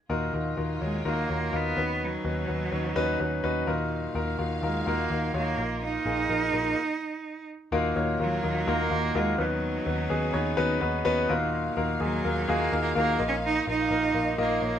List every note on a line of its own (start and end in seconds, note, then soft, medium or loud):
0.09 0.29 D#2 loud
0.09 0.77 A#2 medium
0.09 1.75 D#3 medium
0.09 5.54 F#3 medium
0.09 1.75 A#3 medium
0.09 0.27 D#4 medium
0.09 0.27 F4 medium
0.09 1.75 F4 medium
0.09 0.27 F#4 medium
0.09 0.27 A#4 loud
0.34 0.53 D#2 medium
0.34 0.51 D#4 medium
0.34 0.51 F4 medium
0.34 0.51 F#4 medium
0.34 0.51 A#4 medium
0.57 0.77 D#2 medium
0.57 0.74 D#4 medium
0.57 0.74 F4 medium
0.57 0.74 F#4 medium
0.57 0.74 A#4 medium
0.81 1.01 D#2 medium
0.81 1.04 G#3 medium
0.81 0.98 D#4 medium
0.81 0.98 F4 medium
0.81 0.98 F#4 medium
0.81 0.98 C#5 medium
1.05 1.25 D#2 medium
1.05 1.57 A#3 medium
1.05 1.22 D#4 medium
1.05 1.22 F4 medium
1.05 1.22 F#4 medium
1.05 1.22 A#4 loud
1.29 1.49 D#2 medium
1.29 1.46 D#4 medium
1.29 1.46 F4 medium
1.29 1.46 F#4 medium
1.29 1.46 C#5 medium
1.53 1.72 D#2 medium
1.53 2.06 B3 loud
1.53 1.70 D#4 medium
1.53 1.70 F4 medium
1.53 1.70 F#4 medium
1.53 1.70 A#4 loud
1.76 2.16 D#2 medium
1.76 3.65 C#3 medium
1.76 2.44 D#3 medium
1.76 3.65 B3 medium
1.76 2.15 C#4 medium
1.76 3.65 D#4 medium
1.76 2.15 D#4 medium
1.76 2.15 F#4 medium
1.76 2.15 B4 medium
2.04 3.69 F#3 medium
2.25 2.44 D#2 medium
2.25 2.41 C#4 medium
2.25 2.41 D#4 medium
2.25 2.41 F#4 medium
2.25 2.41 B4 medium
2.48 2.68 D#2 medium
2.48 2.65 C#4 medium
2.48 2.65 D#4 medium
2.48 2.65 F#4 medium
2.48 2.65 B4 medium
2.72 2.92 D#2 medium
2.72 2.89 C#4 medium
2.72 2.89 D#4 medium
2.72 2.89 F#4 medium
2.72 2.89 C#5 loud
2.96 3.16 D#2 medium
2.96 3.13 C#4 loud
2.96 3.13 D#4 loud
2.96 3.13 F#4 medium
2.96 3.13 B4 loud
3.19 3.39 D#2 medium
3.19 3.36 C#4 medium
3.19 3.36 D#4 medium
3.19 3.37 F#4 medium
3.19 3.36 B4 medium
3.44 3.63 D#2 medium
3.44 3.60 C#4 loud
3.44 3.60 D#4 loud
3.44 3.60 F#4 loud
3.44 3.60 B4 loud
3.66 4.06 D#2 medium
3.66 4.35 A#2 medium
3.66 6.73 D#3 medium
3.66 6.73 A#3 medium
3.66 4.05 D#4 medium
3.66 4.05 F4 medium
3.66 4.06 F#4 medium
3.66 4.05 A#4 loud
3.66 5.55 F5 medium
4.15 4.34 D#2 medium
4.15 4.32 D#4 medium
4.15 4.32 F4 medium
4.15 4.32 F#4 medium
4.15 4.32 A#4 loud
4.38 4.58 D#2 medium
4.38 4.55 D#4 medium
4.38 4.56 F4 medium
4.38 4.56 F#4 medium
4.38 4.56 A#4 medium
4.62 4.82 D#2 loud
4.62 4.90 G#3 medium
4.62 4.80 D#4 medium
4.62 4.80 F4 medium
4.62 4.80 F#4 medium
4.62 4.80 A#4 medium
4.86 5.06 D#2 medium
4.86 5.35 A#3 medium
4.86 5.04 D#4 medium
4.86 5.04 F4 medium
4.86 5.04 F#4 medium
4.86 5.04 A#4 loud
5.10 5.30 D#2 medium
5.10 5.27 D#4 medium
5.10 5.27 F4 medium
5.10 5.27 F#4 medium
5.10 5.28 A#4 medium
5.34 5.54 D#2 loud
5.34 5.79 A#3 medium
5.34 5.51 D#4 medium
5.34 5.51 F4 medium
5.34 5.51 F#4 medium
5.34 5.51 C#5 loud
5.57 5.97 A#1 medium
5.57 6.76 F3 medium
5.57 5.96 A#3 medium
5.57 5.96 D#4 medium
5.57 6.75 F4 medium
5.57 5.96 F4 medium
5.57 5.96 A#4 medium
5.84 7.46 D#4 loud
6.06 6.25 A#1 medium
6.06 6.22 A#3 medium
6.06 6.22 D#4 medium
6.06 6.22 F4 medium
6.06 6.22 G#4 medium
6.29 6.49 A#1 medium
6.29 6.46 A#3 medium
6.29 6.46 D#4 medium
6.29 6.46 F4 medium
6.29 6.46 A#4 medium
6.53 6.73 A#1 medium
6.53 6.70 A#3 loud
6.53 6.70 D#4 medium
6.53 6.70 F4 medium
6.53 6.70 A#4 loud
7.72 7.92 D#2 loud
7.72 8.40 A#2 medium
7.72 9.37 D#3 medium
7.72 11.26 F#3 medium
7.72 7.89 A#3 loud
7.72 9.37 A#3 medium
7.72 7.89 D#4 loud
7.72 7.89 F4 loud
7.72 9.37 F4 medium
7.72 7.89 F#4 loud
7.72 7.89 A#4 loud
7.96 8.15 D#2 medium
7.96 8.13 A#3 medium
7.96 8.13 D#4 medium
7.96 8.13 F4 medium
7.96 8.13 F#4 medium
7.96 8.13 C#5 medium
8.19 8.39 D#2 medium
8.19 8.70 F#3 loud
8.19 8.36 A#3 medium
8.19 8.37 D#4 medium
8.19 8.37 F4 medium
8.19 8.37 F#4 medium
8.19 8.37 A#4 medium
8.43 8.63 D#2 loud
8.43 8.60 A#3 medium
8.43 8.60 D#4 medium
8.43 8.60 F4 medium
8.43 8.60 F#4 medium
8.43 8.60 A#4 medium
8.67 8.87 D#2 loud
8.67 8.84 A#3 medium
8.67 9.18 A#3 loud
8.67 8.84 D#4 medium
8.67 8.84 F4 medium
8.67 8.84 F#4 medium
8.67 8.84 A#4 loud
8.91 9.11 D#2 medium
8.91 9.08 A#3 medium
8.91 9.08 D#4 medium
8.91 9.08 F4 medium
8.91 9.08 F#4 medium
8.91 9.08 A#4 medium
9.15 9.34 D#2 loud
9.15 9.39 G#3 loud
9.15 9.32 A#3 medium
9.15 9.32 D#4 medium
9.15 9.32 F4 medium
9.15 9.32 F#4 medium
9.15 9.32 A#4 loud
9.38 9.78 D#2 loud
9.38 11.27 C#3 medium
9.38 10.06 D#3 medium
9.38 10.78 F#3 medium
9.38 9.77 B3 medium
9.38 11.28 B3 medium
9.38 9.77 C#4 medium
9.38 9.77 D#4 medium
9.38 11.28 D#4 medium
9.38 9.77 F#4 medium
9.38 9.77 B4 medium
9.86 10.06 D#2 loud
9.86 10.03 B3 medium
9.86 10.03 C#4 medium
9.86 10.03 D#4 medium
9.86 10.03 F#4 medium
9.86 10.03 B4 medium
10.09 10.30 D#2 medium
10.09 10.27 B3 medium
10.09 10.27 C#4 medium
10.09 10.27 D#4 medium
10.09 10.27 F#4 medium
10.09 10.27 G#4 loud
10.33 10.54 D#2 loud
10.33 10.50 B3 medium
10.33 10.50 C#4 medium
10.33 10.50 D#4 medium
10.33 10.50 F#4 medium
10.33 10.51 C#5 loud
10.57 10.77 D#2 loud
10.57 10.74 B3 loud
10.57 10.74 C#4 loud
10.57 10.74 D#4 loud
10.57 10.74 F#4 loud
10.57 10.74 B4 loud
10.81 11.01 D#2 medium
10.81 10.98 B3 medium
10.81 10.98 C#4 medium
10.81 10.98 D#4 medium
10.81 10.98 F#4 medium
10.81 10.98 B4 loud
11.05 11.25 D#2 medium
11.05 11.22 B3 loud
11.05 11.22 C#4 loud
11.05 11.22 D#4 loud
11.05 11.22 F#4 loud
11.05 11.22 B4 loud
11.29 11.68 D#2 loud
11.29 11.97 A#2 medium
11.29 14.79 D#3 medium
11.29 13.18 F#3 medium
11.29 11.67 A#3 medium
11.29 14.79 A#3 medium
11.29 11.67 D#4 loud
11.29 11.67 F4 medium
11.29 11.67 F#4 medium
11.29 11.67 A#4 loud
11.29 14.79 F5 medium
11.77 11.96 D#2 medium
11.77 11.94 A#3 medium
11.77 11.94 D#4 medium
11.77 11.94 F4 medium
11.77 11.94 F#4 medium
11.77 11.94 A#4 loud
12.00 12.20 D#2 loud
12.00 12.51 F#3 medium
12.00 12.17 A#3 medium
12.00 12.17 D#4 medium
12.00 12.17 F4 medium
12.00 12.17 F#4 medium
12.00 12.17 G#4 medium
12.24 12.44 D#2 loud
12.24 12.41 A#3 medium
12.24 12.41 D#4 medium
12.24 12.41 F4 medium
12.24 12.41 F#4 medium
12.24 12.41 A#4 medium
12.48 12.68 D#2 loud
12.48 12.65 A#3 loud
12.48 12.81 A#3 loud
12.48 12.65 D#4 medium
12.48 12.65 F4 medium
12.48 12.65 F#4 medium
12.48 12.65 G#4 loud
12.72 12.92 D#2 loud
12.72 12.89 A#3 medium
12.72 12.89 D#4 medium
12.72 12.89 F4 medium
12.72 12.89 F#4 medium
12.72 12.89 A#4 medium
12.81 12.95 A#3 medium
12.95 13.16 D#2 medium
12.95 13.12 A#3 medium
12.95 13.26 A#3 loud
12.95 13.12 D#4 medium
12.95 13.12 F4 medium
12.95 13.12 F#4 medium
12.95 13.12 A#4 loud
13.19 13.59 A#1 loud
13.19 14.79 F3 medium
13.19 13.57 A#3 medium
13.19 13.57 D#4 medium
13.19 13.58 F4 medium
13.19 13.57 A#4 medium
13.19 13.58 D#5 medium
13.28 13.35 C#4 medium
13.45 13.66 D#4 loud
13.67 13.87 A#1 loud
13.67 13.84 A#3 medium
13.67 13.84 D#4 medium
13.67 14.36 D#4 loud
13.67 13.84 F4 medium
13.67 13.84 A#4 medium
13.67 13.84 D#5 medium
13.91 14.10 A#1 loud
13.91 14.08 A#3 medium
13.91 14.08 D#4 medium
13.91 14.08 F4 medium
13.91 14.08 A#4 medium
13.91 14.08 D#5 medium
14.14 14.34 A#1 medium
14.14 14.31 A#3 medium
14.14 14.31 D#4 medium
14.14 14.32 F4 medium
14.14 14.32 A#4 medium
14.14 14.31 D#5 medium
14.38 14.58 A#1 loud
14.38 14.55 A#3 loud
14.38 14.79 A#3 medium
14.38 14.55 D#4 medium
14.38 14.55 F4 medium
14.38 14.55 A#4 medium
14.38 14.55 D#5 loud
14.62 14.79 A#1 loud
14.62 14.79 A#3 medium
14.62 14.79 D#4 medium
14.62 14.79 F4 medium
14.62 14.79 A#4 medium
14.62 14.79 C#5 medium